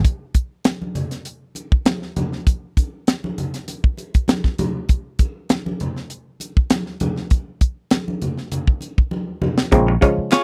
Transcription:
0.05 kick, closed hi-hat
0.34 kick, closed hi-hat
0.64 snare, closed hi-hat, high conga
0.82 high conga
0.95 closed hi-hat, muted conga, low conga
1.11 snare, closed hi-hat
1.25 closed hi-hat
1.55 closed hi-hat, muted conga
1.72 kick
1.86 snare, closed hi-hat, high conga
2.02 snare
2.16 closed hi-hat, muted conga, high conga, low conga
2.32 snare
2.47 kick, closed hi-hat
2.77 kick, closed hi-hat, muted conga
3.07 snare, closed hi-hat, high conga
3.24 high conga
3.38 closed hi-hat, muted conga, low conga
3.54 snare, closed hi-hat
3.68 closed hi-hat, muted conga
3.84 kick
3.97 closed hi-hat, muted conga
4.14 kick, closed hi-hat
4.28 snare, closed hi-hat, muted conga, high conga
4.44 kick, snare
4.58 closed hi-hat, muted conga, high conga, low conga
4.89 kick, closed hi-hat
5.19 kick, closed hi-hat, muted conga
5.49 snare, closed hi-hat, muted conga, high conga
5.66 high conga
5.80 closed hi-hat, muted conga, low conga
5.96 snare
6.10 closed hi-hat
6.40 closed hi-hat, muted conga
6.57 kick
6.70 snare, closed hi-hat, high conga
6.86 snare
7.00 closed hi-hat, muted conga, high conga, low conga
7.16 snare
7.30 kick, closed hi-hat, muted conga
7.61 kick, closed hi-hat
7.91 snare, closed hi-hat, muted conga, high conga
8.08 high conga
8.22 closed hi-hat, muted conga, low conga
8.38 snare
8.52 closed hi-hat, low conga
8.67 kick
8.81 closed hi-hat, muted conga
8.98 kick
9.11 muted conga, high conga
9.42 high conga, low conga
9.58 snare
9.72 A#1 C#3 F3 G#3 A#3 C4, kick, closed hi-hat
9.88 muted clean electric guitar stroke
10.01 C#3 F3 G#3 C#4, kick, closed hi-hat, muted conga
10.18 muted slap bass stroke
10.31 F4 G#4 C#5, muted clean electric guitar stroke, snare, clap, closed hi-hat

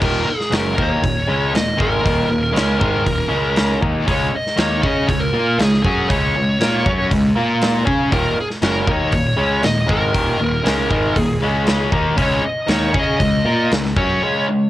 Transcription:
0.01 D#1 D#2 A#2 D#3 A#4, kick, crash
0.27 G#4, muted distorted electric guitar stroke, muted picked electric bass stroke
0.40 snare
0.51 F#1 F#2 C#3 F#3, snare, open hi-hat
0.56 A#4
0.76 D#2 D#3 A#3 D#4, kick
0.83 C#5
1.02 D#1 D#2 A#2, kick, open hi-hat
1.27 C#2 C#3 G#3 C#4
1.52 D#1 D#2 A#2 D#5, snare, open hi-hat
1.77 G#1 G#2 D#3 G#3, kick
1.82 A#4
2.02 D#1 D#2 A#2 D#3, kick
2.07 open hi-hat
2.29 D#1 D#2 A#2
2.52 C#2 C#3 G#3 C#4
2.56 snare, open hi-hat
2.79 G#1 G#2 D#3 G#3, kick
3.04 D#1 D#2 A#2, kick, open hi-hat
3.28 C#2 C#3 G#3 C#4
3.56 snare, open hi-hat
3.81 D#2 D#3 A#3 D#4, kick
4.06 C#2 C#3 G#3 C#4, kick, open hi-hat
4.12 C#5
4.32 D#5, muted distorted electric guitar stroke, muted picked electric bass stroke
4.47 snare
4.56 D#2 D#3 A#3 D#4 C#5, snare, open hi-hat
4.82 C#3 C#4 G#4 C#5 D#5, kick
5.07 C#2 C#3 G#3 C#5, kick, open hi-hat
5.20 A#4
5.33 A#2 A#3 F4 A#4
5.58 C#2 C#3 G#3 G#4, snare, open hi-hat
5.74 snare
5.83 F#2 F#3 C#4 F#4 G#4, kick
6.08 C#2 C#3 G#3 C#4 C#5, kick, open hi-hat
6.35 C#2 C#3 G#3
6.60 A#2 A#3 F4 A#4, snare, open hi-hat
6.86 F#2 F#3 C#4 F#4, kick
7.11 C#2 C#3 G#3, kick, open hi-hat
7.36 A#2 A#3 F4 A#4
7.62 snare, open hi-hat
7.85 C#3 C#4 G#4 C#5, kick
8.10 D#1 D#2 A#2 D#3 A#4, kick, open hi-hat
8.37 G#4, muted picked electric bass stroke, muted distorted electric guitar stroke
8.50 snare
8.62 F#1 F#2 C#3 F#3 A#4, snare, open hi-hat
8.87 D#2 D#3 A#3 D#4, kick
8.91 C#5
9.12 D#1 D#2 A#2, kick, open hi-hat
9.37 C#2 C#3 G#3 C#4
9.63 D#1 D#2 A#2 D#5, snare, open hi-hat
9.86 G#1 G#2 D#3 G#3 A#4, kick
10.12 D#1 D#2 A#2 D#3, kick, open hi-hat
10.38 D#1 D#2 A#2
10.64 C#2 C#3 G#3 C#4, snare, open hi-hat
10.90 G#1 G#2 D#3 G#3, kick
11.16 D#1 D#2 A#2, kick, open hi-hat
11.20 G#4
11.40 C#2 C#3 G#3 C#4
11.67 snare, open hi-hat
11.91 D#2 D#3 A#3 D#4, kick
12.17 C#2 C#3 G#3 C#4, kick, open hi-hat
12.22 C#5
12.43 D#5, muted distorted electric guitar stroke, muted picked electric bass stroke
12.67 D#2 D#3 A#3 D#4 C#5, snare, open hi-hat
12.93 C#3 C#4 G#4 C#5, kick
12.99 D#5
13.19 C#2 C#3 G#3, kick, open hi-hat
13.45 A#2 A#3 F4 A#4
13.71 C#2 C#3 G#3, snare, open hi-hat
13.85 snare
13.96 F#2 F#3 C#4 F#4 C#5, kick
14.22 C#3 G#3 C#4
14.48 C#3 G#3

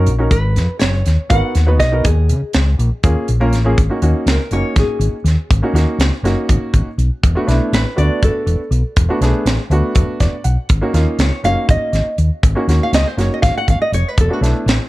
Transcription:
0.06 A#1, closed hi-hat
0.19 C#4 D#4 F#4 A#4
0.31 G#1 B4, kick, closed hi-hat
0.56 F2, snare, closed hi-hat
0.69 muted fingered electric bass stroke
0.79 F#1 C#5, snare, closed hi-hat
1.06 D#2, snare, closed hi-hat
1.30 G#1 B3 D#4 F#4 A#4 F#5, kick, closed hi-hat
1.55 D#2, snare, closed hi-hat
1.67 B3 D#4 F#4 B4
1.80 B1 D#5, kick, snare, closed hi-hat
1.92 B3 D#4 F#4 A#4
2.04 D#2 G#4, kick, closed hi-hat
2.29 C#3, closed hi-hat
2.42 muted fingered electric bass stroke
2.53 C#2, snare, closed hi-hat
2.79 A#1, closed hi-hat
3.03 D#2 A#3 C#4 F4 G#4, kick, closed hi-hat
3.28 A#1, closed hi-hat
3.40 A#3 C#4 F4 A#4
3.53 A1, snare, closed hi-hat
3.64 A#3 C#4 F4 G#4
3.78 G#1, kick, closed hi-hat
3.90 A#3 C#4 D#4 F#4
4.02 D#2 A#3 C#4 D#4 F#4, closed hi-hat
4.26 C#2 A#4, snare, closed hi-hat
4.51 F#1 A#3 C#4 D#4 F#4 C#5, closed hi-hat
4.76 G#1 G#4, kick, snare, closed hi-hat
4.99 G#1, closed hi-hat
5.24 D#2, snare, closed hi-hat
5.51 G#1, kick, closed hi-hat
5.62 A#3 C#4 D#4 F#4
5.73 D#2 A#3 C#4 D#4 F#4, snare, closed hi-hat
5.98 C#2, snare, closed hi-hat
6.23 F#1 A#3 C#4 D#4 F#4, snare, closed hi-hat
6.49 G#1, kick, closed hi-hat
6.74 G#1, kick, closed hi-hat
6.98 B1, closed hi-hat
7.23 E1, kick, closed hi-hat
7.35 A3 B3 D4 F#4
7.47 B1 A3 B3 D4 E4, snare, closed hi-hat
7.73 A1 B4, snare, closed hi-hat
7.96 D2 A3 B3 D4 F#4 D5, closed hi-hat
8.22 E1 A4, kick, closed hi-hat
8.46 E1, closed hi-hat
8.71 B1, closed hi-hat
8.96 E1, kick, closed hi-hat
9.09 A3 B3 D4 F#4
9.21 B1 A3 B3 D4 G#4, snare, closed hi-hat
9.45 A1, snare, closed hi-hat
9.70 D2 A3 B3 D4 F#4, closed hi-hat
9.95 E1, kick, closed hi-hat
10.20 E1 D5, kick, snare, closed hi-hat
10.32 muted fingered electric bass stroke
10.44 B1 F#5, closed hi-hat
10.69 G#1, kick, closed hi-hat
10.81 A#3 C#4 D#4 F#4
10.93 D#2 A#3 C#4 D#4 F4, snare, closed hi-hat
11.18 C#2 C#5, snare, closed hi-hat
11.43 F#1 A#3 C#4 D#4 F#4 F5, closed hi-hat
11.69 G#1 D#5, kick, closed hi-hat
11.93 G#1, snare, closed hi-hat
12.05 muted fingered electric bass stroke
12.18 D#2, closed hi-hat
12.43 G#1, kick, closed hi-hat
12.55 A#3 C#4 D#4 F#4
12.68 D#2 A#3 C#4 D#4 F#4, snare, closed hi-hat
12.83 F5
12.92 C#2 D#5, snare, closed hi-hat
13.07 C5
13.17 F#1 A#3 C#4 D#4 F#4, snare, closed hi-hat
13.21 C#5
13.34 D#5
13.42 G#1 F5, kick, snare, closed hi-hat
13.55 F#5, muted fingered electric bass stroke
13.68 G#1 F5, kick, closed hi-hat
13.80 D#5, muted fingered electric bass stroke
13.92 F1 C#5, closed hi-hat
14.08 B4
14.18 E1 A4, kick, closed hi-hat
14.29 A3 B3 D4 F#4
14.33 F#4
14.41 B1 A3 B3 D4 E4, snare, closed hi-hat
14.66 A1, snare, closed hi-hat

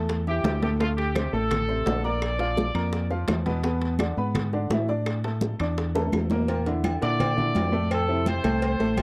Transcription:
Already playing: E2 A3 A4 A5
0.09 high bongo, high conga, high timbale
0.27 E3 E4 G4 E5, high bongo, high conga
0.44 D2, high bongo, low bongo, high conga, high timbale, low timbale
0.62 A2 A3 G4 A4, high bongo, high conga, high timbale
0.80 A2 A3 F4 A4, high bongo, high conga, high timbale
0.97 G4, high bongo, high conga, high timbale
1.15 C3 C4 C5, high bongo, high conga, high timbale, low timbale, claves
1.33 A1 A3 A4 A5, high conga
1.51 high bongo, high conga, low conga, high timbale, claves
1.69 C3 C4 C5, high bongo, high conga
1.86 A#1 D3 D4 D5, high bongo, low bongo, high conga, high timbale, low timbale
2.04 A#3 A#4 D5 A#5, high bongo, high conga
2.22 high bongo, high conga, high timbale, claves
2.39 F3 F4 F5, high bongo, high conga, high timbale
2.57 high bongo, high conga, low timbale
2.75 F2 A#3 A#4 A#5, high conga, high timbale, claves
2.93 high bongo, high conga, high timbale
3.11 F3 F4 F5, high bongo, high conga
3.28 E2, high bongo, low bongo, high conga, high timbale, low timbale, claves
3.46 B2 B3 B4, high bongo, high conga, high timbale
3.64 B2 B3 B4, high bongo, high timbale
3.81 high bongo, high conga, high timbale
3.99 D3 D4 D5, high bongo, high conga, high timbale, low timbale, claves
4.17 G#2 B3 B4 B5, high conga
4.35 high bongo, high conga, low conga, high timbale, claves
4.53 D3 D4 D5, high bongo, high conga
4.70 A2 E3 E4 E5, high bongo, low bongo, high conga, high timbale, low timbale
4.88 D4 D5 D6, high bongo, high conga
5.06 high bongo, high conga, high timbale, claves
5.24 A3 A4 A5, high bongo, high conga, high timbale
5.41 high bongo, high conga, low timbale
5.59 E2 D4 D5 D6, high conga, high timbale, claves
5.77 high bongo, high conga, high timbale
5.95 A3 A4 A5, high bongo, high conga, high timbale
6.12 E2, high bongo, high conga, low timbale, claves
6.30 A#2 A#3 A#4, low bongo, high conga, low timbale
6.48 A#2 A#3 A#4, cowbell, high conga, low agogo
6.66 D3 D4 E4, cowbell, high conga
6.84 cowbell, high conga, low timbale, low agogo, claves
7.02 A#2 D3 D4 E4 D5, cowbell, high conga
7.20 cowbell, high conga, low conga, low agogo, claves
7.37 D3 D4 E4, high conga, low conga
7.55 F2, cowbell, high conga, low timbale, low agogo
7.72 A2 A3 A4, high conga
7.90 A4, cowbell, high conga, low agogo, claves
8.08 C3 C4 E4, high conga
8.26 C5, cowbell, high conga, low timbale, low agogo
8.44 C2 A2 A3 A4, cowbell, low agogo, claves
8.61 C5, cowbell, high conga, low agogo
8.79 A1 A2 A3 A4, high conga, low agogo
8.97 G1, cowbell, high conga, low timbale, low agogo, claves

